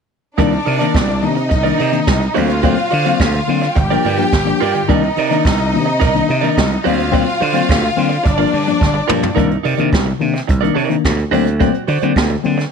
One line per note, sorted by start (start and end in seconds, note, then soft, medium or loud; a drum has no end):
0.38 0.57 C2 loud
0.38 0.52 D#3 medium
0.38 0.52 A#3 medium
0.38 1.22 D4 medium
0.38 0.52 D4 loud
0.38 0.60 D#4 medium
0.38 0.52 A#4 medium
0.38 1.22 D5 medium
0.38 0.51 D5 medium
0.38 kick loud
0.38 closed hi-hat medium
0.52 muted clean electric guitar stroke soft
0.52 closed hi-hat soft
0.65 0.86 C3 medium
0.65 0.80 C3 medium
0.65 0.80 D#4 soft
0.65 0.79 A#4 medium
0.65 0.78 D5 medium
0.65 open hi-hat medium
0.79 0.94 D#3 medium
0.79 0.94 A#3 medium
0.79 0.94 D4 medium
0.79 0.93 D#4 soft
0.79 0.94 A#4 medium
0.79 0.94 D5 medium
0.79 closed hi-hat soft
0.94 1.25 C2 loud
0.94 1.01 A#3 soft
0.94 1.01 D4 soft
0.94 muted clean electric guitar stroke soft
0.94 kick loud
0.94 snare loud
0.94 closed hi-hat medium
1.08 1.22 C3 medium
1.08 muted clean electric guitar stroke soft
1.08 closed hi-hat soft
1.22 1.53 C3 medium
1.22 1.36 D#3 medium
1.22 1.36 A#3 medium
1.22 1.36 D4 medium
1.22 2.33 D#4 medium
1.22 2.34 D#5 medium
1.22 open hi-hat medium
1.35 muted clean electric guitar stroke soft
1.35 closed hi-hat soft
1.49 1.70 C2 medium
1.49 muted clean electric guitar stroke soft
1.49 kick medium
1.49 closed hi-hat medium
1.63 1.78 D#3 medium
1.63 1.78 A#3 medium
1.63 1.79 D4 medium
1.63 1.77 D#4 soft
1.63 1.78 A#4 medium
1.63 1.78 D5 medium
1.63 closed hi-hat medium
1.78 1.92 C3 medium
1.78 1.99 C3 medium
1.78 2.01 D#4 medium
1.78 1.92 A#4 medium
1.78 1.91 D5 medium
1.78 open hi-hat medium
1.92 2.06 D#3 medium
1.92 2.06 A#3 medium
1.92 2.06 D4 medium
1.92 muted clean electric guitar stroke soft
1.92 closed hi-hat soft
2.07 2.26 C2 medium
2.07 2.21 C3 medium
2.07 kick medium
2.07 snare medium
2.07 closed hi-hat medium
2.20 muted clean electric guitar stroke soft
2.20 closed hi-hat soft
2.34 2.74 D2 medium
2.34 2.49 F#3 medium
2.34 2.49 A#3 medium
2.34 2.49 C4 medium
2.34 3.74 F4 medium
2.34 2.57 F#4 medium
2.34 2.49 C5 medium
2.34 2.48 D5 medium
2.34 3.74 F5 medium
2.34 open hi-hat medium
2.49 2.56 A#3 soft
2.49 2.56 C4 soft
2.49 muted clean electric guitar stroke soft
2.49 closed hi-hat soft
2.63 2.77 F#3 medium
2.63 2.77 A#3 medium
2.63 2.77 C4 loud
2.63 2.85 F#4 medium
2.63 2.77 C5 medium
2.63 2.76 D5 medium
2.63 kick loud
2.63 closed hi-hat medium
2.77 muted clean electric guitar stroke soft
2.77 closed hi-hat soft
2.90 3.05 D3 medium
2.90 3.12 D3 loud
2.90 3.04 F#4 medium
2.90 3.04 C5 medium
2.90 3.03 D5 medium
2.90 open hi-hat medium
3.04 3.19 F#3 medium
3.04 3.19 A#3 medium
3.04 3.19 C4 medium
3.04 3.18 F#4 medium
3.04 3.18 C5 medium
3.04 3.18 D5 medium
3.04 closed hi-hat soft
3.19 3.39 D2 medium
3.19 3.26 A#3 soft
3.19 3.26 C4 soft
3.19 muted clean electric guitar stroke soft
3.19 kick medium
3.19 snare medium
3.19 closed hi-hat medium
3.33 3.48 D3 medium
3.33 muted clean electric guitar stroke soft
3.33 closed hi-hat soft
3.48 3.67 D3 medium
3.48 3.61 F#3 medium
3.48 3.61 A#3 medium
3.48 3.61 C4 medium
3.48 open hi-hat medium
3.62 muted clean electric guitar stroke soft
3.62 snare soft
3.62 closed hi-hat soft
3.75 3.96 G1 loud
3.75 4.87 G4 medium
3.75 4.87 G5 medium
3.75 muted clean electric guitar stroke soft
3.75 kick loud
3.75 closed hi-hat medium
3.90 4.04 F3 medium
3.90 4.04 A#3 medium
3.90 4.04 D4 medium
3.90 4.03 F4 medium
3.90 4.04 A#4 medium
3.90 4.05 D5 medium
3.90 closed hi-hat soft
4.04 4.17 G2 medium
4.04 4.24 G2 medium
4.04 4.18 D3 medium
4.04 4.26 F4 medium
4.04 4.19 A#4 medium
4.04 4.18 D5 medium
4.04 open hi-hat medium
4.18 4.32 F3 medium
4.18 4.32 A#3 medium
4.18 4.32 D4 medium
4.18 muted clean electric guitar stroke soft
4.18 closed hi-hat soft
4.33 4.52 G1 loud
4.33 kick medium
4.33 snare medium
4.33 closed hi-hat medium
4.45 4.59 F3 medium
4.45 4.59 A#3 medium
4.45 4.59 D4 medium
4.45 muted clean electric guitar stroke soft
4.45 closed hi-hat soft
4.60 4.80 G2 loud
4.60 4.82 F4 medium
4.60 4.75 A#4 medium
4.60 4.74 D5 medium
4.60 open hi-hat medium
4.74 4.88 G2 medium
4.74 4.88 D3 medium
4.74 muted clean electric guitar stroke soft
4.74 closed hi-hat soft
4.88 5.08 C2 loud
4.88 5.02 D#3 medium
4.88 5.02 A#3 medium
4.88 5.02 D4 loud
4.88 5.11 D#4 medium
4.88 6.81 D#4 medium
4.88 5.02 A#4 medium
4.88 5.01 D5 medium
4.88 6.81 D#5 medium
4.88 kick medium
4.88 closed hi-hat medium
5.03 muted clean electric guitar stroke soft
5.03 closed hi-hat soft
5.17 5.30 C3 medium
5.17 5.36 C3 medium
5.17 5.31 D#4 medium
5.17 5.30 A#4 medium
5.17 5.29 D5 medium
5.17 open hi-hat medium
5.30 5.44 D#3 medium
5.30 5.44 A#3 medium
5.30 5.44 D4 medium
5.30 5.43 D#4 medium
5.30 5.43 A#4 medium
5.30 5.44 D5 medium
5.30 closed hi-hat soft
5.44 5.76 C2 loud
5.44 5.51 A#3 soft
5.44 5.51 D4 soft
5.44 muted clean electric guitar stroke soft
5.44 kick loud
5.44 snare loud
5.44 closed hi-hat medium
5.58 5.72 C3 medium
5.58 muted clean electric guitar stroke soft
5.58 closed hi-hat soft
5.73 6.03 C3 medium
5.73 5.86 D#3 medium
5.73 5.86 A#3 medium
5.73 5.87 D4 medium
5.73 open hi-hat medium
5.86 muted clean electric guitar stroke soft
5.86 closed hi-hat soft
6.00 6.20 C2 medium
6.00 6.22 D#4 medium
6.00 6.13 A#4 medium
6.00 6.12 D5 medium
6.00 kick loud
6.00 closed hi-hat medium
6.13 6.28 D#3 medium
6.13 6.28 A#3 medium
6.13 6.28 D4 medium
6.13 muted clean electric guitar stroke soft
6.13 closed hi-hat soft
6.28 6.42 C3 medium
6.28 6.48 C3 medium
6.28 muted clean electric guitar stroke soft
6.28 open hi-hat medium
6.41 6.56 D#3 medium
6.41 6.57 A#3 medium
6.41 6.56 D4 medium
6.41 6.60 D#4 soft
6.41 6.60 A#4 soft
6.41 6.59 D5 medium
6.41 closed hi-hat soft
6.57 6.76 C2 loud
6.57 6.71 C3 medium
6.57 kick medium
6.57 snare loud
6.57 closed hi-hat medium
6.71 muted clean electric guitar stroke soft
6.71 closed hi-hat soft
6.84 7.23 D2 loud
6.84 6.98 F#3 medium
6.84 6.97 A#3 medium
6.84 6.97 C4 medium
6.84 8.23 F4 medium
6.84 7.06 F#4 medium
6.84 6.99 C5 medium
6.84 6.98 D5 loud
6.84 8.23 F5 loud
6.84 open hi-hat medium
6.98 7.05 A#3 soft
6.98 7.04 C4 soft
6.98 muted clean electric guitar stroke soft
6.98 closed hi-hat soft
7.11 7.25 F#3 medium
7.11 7.26 A#3 medium
7.11 7.26 C4 loud
7.11 7.35 F#4 medium
7.11 7.27 C5 medium
7.11 7.25 D5 medium
7.11 kick loud
7.11 closed hi-hat medium
7.26 muted clean electric guitar stroke soft
7.26 closed hi-hat soft
7.40 7.54 D3 medium
7.40 7.60 D3 loud
7.40 7.54 F#4 medium
7.40 7.54 C5 medium
7.40 7.53 D5 medium
7.40 open hi-hat medium
7.54 7.67 F#3 medium
7.54 7.68 A#3 medium
7.54 7.68 C4 medium
7.54 7.67 F#4 medium
7.54 7.68 C5 medium
7.54 7.68 D5 medium
7.54 closed hi-hat soft
7.68 7.88 D2 medium
7.68 7.75 A#3 soft
7.68 7.75 C4 soft
7.68 muted clean electric guitar stroke soft
7.68 kick loud
7.68 snare loud
7.68 closed hi-hat medium
7.82 7.96 D3 medium
7.82 muted clean electric guitar stroke soft
7.82 closed hi-hat soft
7.96 8.16 D3 medium
7.96 8.10 F#3 medium
7.96 8.10 A#3 medium
7.96 8.10 C4 medium
7.96 open hi-hat medium
8.09 muted clean electric guitar stroke medium
8.09 closed hi-hat soft
8.24 8.44 G1 loud
8.24 9.35 D4 medium
8.24 9.35 D5 medium
8.24 muted clean electric guitar stroke soft
8.24 kick loud
8.24 closed hi-hat medium
8.38 8.52 F3 medium
8.38 8.52 A#3 medium
8.38 8.52 D4 medium
8.38 8.50 F4 medium
8.38 8.51 A#4 medium
8.38 8.51 D5 medium
8.38 closed hi-hat medium
8.51 8.72 G2 medium
8.51 8.66 G2 medium
8.51 8.66 D3 medium
8.51 muted clean electric guitar stroke soft
8.51 open hi-hat medium
8.66 8.80 F3 medium
8.66 8.80 A#3 medium
8.66 8.81 D4 medium
8.66 muted clean electric guitar stroke soft
8.66 closed hi-hat soft
8.81 9.00 G1 loud
8.81 8.94 G2 medium
8.81 8.94 D3 medium
8.81 kick loud
8.81 snare soft
8.94 muted clean electric guitar stroke soft
9.08 9.28 G2 loud
9.08 9.23 F3 medium
9.08 9.21 A#3 medium
9.08 9.22 D4 medium
9.08 9.30 F4 medium
9.08 9.22 A#4 medium
9.08 9.21 D5 medium
9.08 mid tom medium
9.22 9.28 A#3 soft
9.22 9.29 D4 soft
9.22 muted clean electric guitar stroke soft
9.22 floor tom medium
9.35 9.56 C2 medium
9.35 9.49 D#3 medium
9.35 9.50 A#3 medium
9.35 9.50 D4 loud
9.35 9.58 D#4 medium
9.35 9.50 A#4 medium
9.35 9.49 D5 medium
9.35 kick medium
9.35 closed hi-hat medium
9.50 muted clean electric guitar stroke soft
9.50 closed hi-hat soft
9.63 9.78 C3 medium
9.63 9.74 C3 medium
9.63 9.78 D#4 medium
9.63 9.77 A#4 medium
9.63 9.76 D5 medium
9.63 open hi-hat medium
9.77 9.89 C3 medium
9.77 9.92 D#3 medium
9.77 9.91 A#3 medium
9.77 9.91 D4 medium
9.77 9.90 D#4 medium
9.77 9.91 A#4 medium
9.77 9.92 D5 medium
9.77 closed hi-hat soft
9.91 10.12 C2 loud
9.91 9.98 A#3 soft
9.91 9.98 D4 soft
9.91 muted clean electric guitar stroke soft
9.91 kick loud
9.91 snare loud
9.91 closed hi-hat medium
10.06 10.19 C3 medium
10.06 muted clean electric guitar stroke medium
10.06 closed hi-hat soft
10.20 10.39 C3 medium
10.20 10.33 D#3 medium
10.20 10.33 A#3 medium
10.20 10.34 D4 medium
10.20 open hi-hat medium
10.34 muted clean electric guitar stroke soft
10.34 snare soft
10.34 closed hi-hat soft
10.47 10.68 C2 loud
10.47 muted clean electric guitar stroke soft
10.47 kick loud
10.47 closed hi-hat medium
10.61 10.76 D#3 medium
10.61 10.76 A#3 medium
10.61 10.76 D4 medium
10.61 10.73 D#4 soft
10.61 10.74 A#4 soft
10.61 10.75 D5 medium
10.61 closed hi-hat soft
10.74 10.95 C3 medium
10.74 10.89 C3 medium
10.74 10.97 D#4 medium
10.74 10.89 A#4 medium
10.74 10.88 D5 medium
10.74 open hi-hat medium
10.89 11.03 D#3 medium
10.89 11.03 A#3 medium
10.89 11.03 D4 medium
10.89 muted clean electric guitar stroke soft
10.89 closed hi-hat soft
11.05 11.24 D2 loud
11.05 kick medium
11.05 snare medium
11.05 closed hi-hat medium
11.17 muted clean electric guitar stroke soft
11.17 closed hi-hat soft
11.31 11.69 D2 medium
11.31 11.46 F#3 medium
11.31 11.46 A#3 medium
11.31 11.46 C4 medium
11.31 11.54 F#4 medium
11.31 11.45 C5 loud
11.31 11.44 D5 loud
11.31 open hi-hat medium
11.45 muted clean electric guitar stroke soft
11.45 closed hi-hat soft
11.59 11.73 F#3 medium
11.59 11.74 A#3 medium
11.59 11.74 C4 loud
11.59 11.82 F#4 medium
11.59 11.74 C5 medium
11.59 11.73 D5 medium
11.59 kick loud
11.59 closed hi-hat medium
11.74 muted clean electric guitar stroke soft
11.74 closed hi-hat soft
11.87 11.98 D3 medium
11.87 12.01 D3 medium
11.87 12.02 F#4 medium
11.87 12.01 C5 medium
11.87 12.00 D5 medium
11.87 open hi-hat medium
12.01 12.12 D3 medium
12.01 12.16 F#3 medium
12.01 12.15 A#3 medium
12.01 12.15 C4 medium
12.01 12.15 F#4 soft
12.01 12.15 C5 medium
12.01 12.16 D5 medium
12.01 closed hi-hat soft
12.16 12.35 D2 loud
12.16 12.22 A#3 soft
12.16 12.22 C4 soft
12.16 muted clean electric guitar stroke soft
12.16 kick loud
12.16 snare loud
12.16 closed hi-hat medium
12.30 12.43 D3 medium
12.30 muted clean electric guitar stroke soft
12.30 closed hi-hat soft
12.43 12.63 D3 medium
12.43 12.57 F#3 medium
12.43 12.57 A#3 medium
12.43 12.57 C4 medium
12.43 open hi-hat medium
12.58 muted clean electric guitar stroke soft
12.58 snare soft
12.58 closed hi-hat soft